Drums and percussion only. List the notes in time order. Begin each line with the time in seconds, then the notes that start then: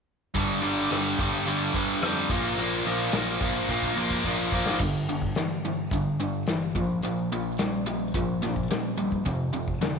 0.35 kick, closed hi-hat
0.63 closed hi-hat
0.91 cross-stick, closed hi-hat
1.19 kick, closed hi-hat
1.46 closed hi-hat
1.74 kick, closed hi-hat
2.02 cross-stick, closed hi-hat
2.29 kick, closed hi-hat
2.57 closed hi-hat
2.85 closed hi-hat
3.12 snare, closed hi-hat
3.41 kick, closed hi-hat
3.69 kick
3.83 kick
4.11 kick
4.24 kick
4.52 kick
4.66 snare
4.79 kick, crash
5.22 kick
5.35 snare, closed hi-hat
5.91 kick, closed hi-hat
6.47 snare, closed hi-hat
6.75 kick
7.02 closed hi-hat
7.58 snare, closed hi-hat
8.14 kick, closed hi-hat
8.44 snare
8.56 kick
8.71 snare, closed hi-hat
9.12 kick
9.26 kick, closed hi-hat
9.68 kick
9.82 snare, closed hi-hat